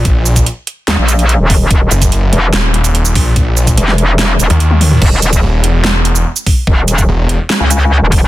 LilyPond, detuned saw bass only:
\new Staff \with { instrumentName = "Detuned saw bass" } { \clef bass \time 4/4 \key ees \phrygian \tempo 4 = 145 bes,,4 r2. | r8 ges,,4 r8 ees,,4. bes,,8~ | bes,,4 r4. r16 ees,4~ ees,16 | r4 ees,,8 fes,,4. r4 |
r4 fes,,8. r2 r16 | }